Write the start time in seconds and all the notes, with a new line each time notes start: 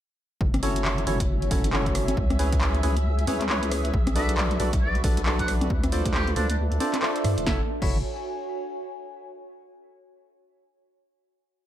0.41 F#1 F#4 E5, kick
0.48 C#5
0.54 G#5, cross-stick, closed hi-hat, high conga
0.63 C#4 E4 F#4 A4 C#5, open hi-hat
0.76 closed hi-hat
0.85 clap
0.98 closed hi-hat
1.07 F#1 C#4 E4 F#4 A4 C#5, open hi-hat
1.20 kick, closed hi-hat
1.42 closed hi-hat
1.51 F#1 C#4 E4 F#4 A4 C#5, kick, open hi-hat
1.64 closed hi-hat
1.73 C#4 E4 F#4 A4 C#5, clap
1.86 kick, closed hi-hat
1.95 cross-stick, open hi-hat
2.08 closed hi-hat, high conga
2.17 C#2, kick
2.30 cross-stick, closed hi-hat, high conga
2.39 C#4 E4 G#4 B4 C#5, open hi-hat
2.52 G#4, kick, closed hi-hat
2.61 clap
2.75 closed hi-hat
2.83 C#2 C#4 E4 G#4 B4 C#5, open hi-hat
2.97 D#6, closed hi-hat
3.19 closed hi-hat
3.27 C#2 C#4 E4 G#4 B4 C#5, open hi-hat, high conga
3.41 clap, closed hi-hat, high conga
3.49 C#4 E4 G#4 B4 C#5, clap
3.63 closed hi-hat
3.72 cross-stick, open hi-hat
3.85 closed hi-hat
3.94 B1 B4, kick
4.07 cross-stick, closed hi-hat, high conga
4.14 D4 F#4 A4 B4 D5 E5 C#6, open hi-hat
4.29 F#4, closed hi-hat
4.38 clap
4.51 closed hi-hat
4.60 B1 D4 F#4 A4 B4 D5, open hi-hat
4.73 kick, closed hi-hat
4.82 D5
4.95 closed hi-hat
5.04 B1 D4 F#4 A4 B4 D5, kick, open hi-hat
5.17 closed hi-hat
5.26 D4 F#4 A4 B4 D5, clap
5.39 F#5, kick, closed hi-hat
5.48 cross-stick, open hi-hat
5.61 closed hi-hat, high conga
5.70 D2 D4, kick
5.83 cross-stick, closed hi-hat, high conga
5.92 D4 F4 A4 C5 D5, open hi-hat
6.05 kick, closed hi-hat
6.11 G4 A4, clap
6.28 closed hi-hat
6.36 D2 D4 F4 A4 C5 D5 E5, open hi-hat
6.49 D4, closed hi-hat
6.72 closed hi-hat
6.80 D4 F4 A4 C5 D5, open hi-hat, high conga
6.94 clap, closed hi-hat, high conga
7.02 D4 F4 A4 C5 D5, clap
7.16 closed hi-hat
7.24 G2, cross-stick, open hi-hat
7.38 D1, closed hi-hat
7.47 F#1 E4 F#4 A4 C#5 E5, kick, snare
7.54 C#5
7.61 G#5
7.82 F#1 E4 F#4 A4 C#5 E5, kick, crash